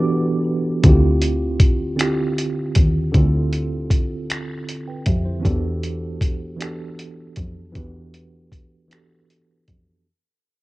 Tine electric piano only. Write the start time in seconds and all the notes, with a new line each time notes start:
Already playing: E3 B3 D4 F#4 G4 A4 B4
0.83 D3 C4 E4 F4
0.88 G4
1.96 D3 C4 E4
2.00 F4 G4
3.12 D3 C4 E4 F4
3.18 A4
4.88 B4 G5
5.07 G4 E5
5.25 E4 C5
5.40 E3 B3 D4 F#4
5.45 G4 A4
6.57 E3 B3 D4 F#4
6.61 G4 A4
7.72 E3 B3 D4 F#4
7.77 G4 B4
8.88 E3 B3 D4 F#4
8.93 G4 A4